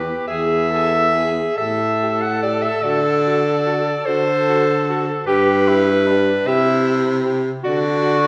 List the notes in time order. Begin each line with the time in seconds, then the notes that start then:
Already playing: E2 G4 B4
0.28 E2 G#4 E5
0.71 G#4 A4
1.15 G#4
1.56 A2 G4 A4 E5
2.02 G4
2.21 F#5
2.42 G4 D5
2.62 E5
2.83 D3 F#4 D5
3.27 F#4
3.66 F#4
4.06 D3 F#4 A4 C5
4.49 F#4
4.89 F#4
5.26 G2 G4 B4
5.68 E4 G4
6.08 D4 G4
6.46 C3 E4 G4 E5
6.87 G4
7.25 G4
7.63 D3 F#4 D5
8.02 F#4